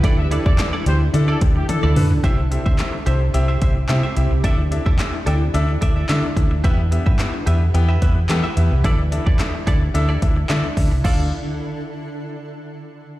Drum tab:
CC |----------------|----------------|----------------|----------------|
HH |x-x-x-x-x-x-x-o-|x-x-x-x-x-x-x-x-|x-x-x-x-x-x-x-x-|x-x-x-x-x-x-x-x-|
CP |----x-----------|----x-------x---|----x-------x---|----x-------x---|
SD |----o-----------|----o-------o---|----o-------o---|----o-------o---|
T1 |------------o---|----------------|----------------|----------------|
T2 |--------------o-|----------------|----------------|----------------|
FT |---------------o|----------------|----------------|----------------|
BD |o--o------o-----|o--o------o-----|o--o------o---o-|o--o------o-----|

CC |----------------|x---------------|
HH |x-x-x-x-x-x-x-o-|----------------|
CP |----x-------x---|----------------|
SD |----o-------o---|----------------|
T1 |----------------|----------------|
T2 |----------------|----------------|
FT |----------------|----------------|
BD |o--o--o---o---o-|o---------------|